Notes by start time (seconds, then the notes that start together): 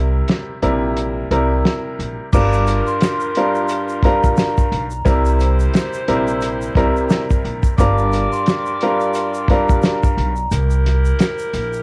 Already playing: C2 C3 G3 E4 A#4
0.28 snare, closed hi-hat
0.62 A#1 C3 G3 E4 A#4, closed hi-hat
0.97 closed hi-hat
1.31 C2 C3 G3 E4 A#4, closed hi-hat
1.65 snare, closed hi-hat
1.99 A#1, closed hi-hat
2.32 G1 G2 G3 F4 G4 A#4 D6, kick, crash, shaker
2.52 shaker
2.67 closed hi-hat, shaker
2.87 C6, shaker
3.01 snare, closed hi-hat, shaker
3.20 shaker
3.35 G2 G3 F4 A#4, closed hi-hat
3.55 shaker
3.68 closed hi-hat, shaker
3.89 shaker
4.03 G2 G3 F4 A#4 A#5, kick, closed hi-hat
4.24 A#1, kick, shaker
4.37 snare, closed hi-hat, shaker
4.58 kick, shaker
4.72 B1, closed hi-hat
4.90 shaker
5.05 C2 C3 G3 E4 G4 A#4 C5, kick, closed hi-hat, shaker
5.25 shaker
5.40 closed hi-hat, shaker
5.60 shaker
5.73 snare, closed hi-hat, shaker
5.93 shaker
6.08 A#1 C3 G3 E4 A#4, closed hi-hat
6.28 shaker
6.41 closed hi-hat, shaker
6.62 shaker
6.75 C2 C3 G3 E4 A#4, kick, closed hi-hat
6.96 shaker
7.10 snare, closed hi-hat, shaker
7.30 kick, shaker
7.45 A#1, closed hi-hat
7.63 kick, shaker
7.77 G1 G2 G3 F4 G4 A#4 D5 D6, kick, closed hi-hat, shaker
7.98 shaker
8.12 closed hi-hat, shaker
8.32 C6, shaker
8.46 snare, closed hi-hat, shaker
8.66 shaker
8.81 G2 G3 F4 A#4, closed hi-hat
9.00 shaker
9.14 closed hi-hat, shaker
9.34 shaker
9.48 G2 G3 F4 A#4 A#5, kick, closed hi-hat
9.69 A#1, kick, shaker
9.82 snare, closed hi-hat, shaker
10.03 kick, shaker
10.17 B1, closed hi-hat
10.36 shaker
10.51 C2 E4 G4 A#4, closed hi-hat, shaker
10.70 shaker
10.86 snare, closed hi-hat
11.05 shaker
11.19 snare, closed hi-hat, shaker
11.38 shaker
11.53 A#1, closed hi-hat, shaker
11.73 shaker